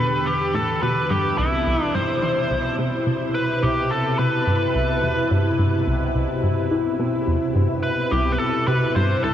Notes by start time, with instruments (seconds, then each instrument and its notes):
Already playing: analog synth pad E2 D3 G4
0.00 analog synth bass B2, lead electric guitar B4
0.27 lead electric guitar G4
0.54 analog synth bass A2, lead electric guitar A4
0.82 analog synth bass B2, lead electric guitar B4
1.10 analog synth bass G2, analog synth pad B2 C3 E4, lead electric guitar G4
1.38 analog synth bass C2, lead electric guitar E4
1.66 analog synth bass C2
1.83 lead electric guitar D4
1.94 analog synth bass G2, lead electric guitar C5
2.22 analog synth bass E3
2.51 analog synth bass C2
2.79 analog synth bass C3
3.07 analog synth bass C3
3.35 lead electric guitar B4
3.63 analog synth bass C2, lead electric guitar G4
3.91 lead electric guitar A4
4.19 analog synth bass C3, lead electric guitar B4
4.47 analog synth bass G2
4.75 analog synth bass C2
5.03 analog synth bass E2
5.31 analog synth bass G2
5.59 analog synth bass G2
5.87 analog synth bass C2
6.15 analog synth bass C2
6.43 analog synth bass G2
6.71 analog synth bass E3
6.99 analog synth bass B2
7.27 analog synth bass E2
7.55 analog synth bass G2
7.83 lead electric guitar B4
8.11 analog synth bass C2, lead electric guitar G4
8.32 lead electric guitar B4
8.39 lead electric guitar A4
8.67 analog synth bass C3, lead electric guitar B4
8.95 analog synth bass G2, lead electric guitar C5
9.23 analog synth bass C2, lead electric guitar A4